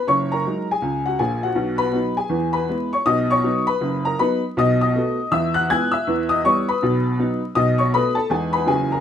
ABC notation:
X:1
M:4/4
L:1/8
Q:"Swing" 1/4=160
K:B
V:1 name="Upright piano"
[cc'] [Aa]2 [Gg]2 [Ff] [Gg] [Ff]- | [Ff] [Bb]2 [Gg]2 [Bb]2 [cc'] | [dd'] [cc']2 [Bb]2 [Aa] [Bb] z | [dd'] [dd']3 [ee'] [ff'] [gg'] [ee']- |
[ee'] [dd'] [cc'] [Bb]4 z | [dd'] [cc'] [Bb] [=A=a] [Gg] [Bb] [Gg] [^A^a] |]
V:2 name="Upright piano" clef=bass
[F,,,F,,]2 [F,G,D]2 [C,,C,]2 [A,,,A,,]2 | [B,,,B,,]2 [F,B,D]2 [E,,E,]2 [G,B,E]2 | [B,,,B,,]2 [F,B,D]2 [F,,,F,,]2 [F,B,D]2 | [B,,,B,,]2 [=A,B,F]2 [E,,E,]2 [G,B,E]2 |
[E,,E,]2 [=G,B,E]2 [B,,,B,,]2 [F,B,D]2 | [B,,,B,,]2 [=A,B,F]2 [E,,E,G,B,D]2 [F,,,F,,E,F,C]2 |]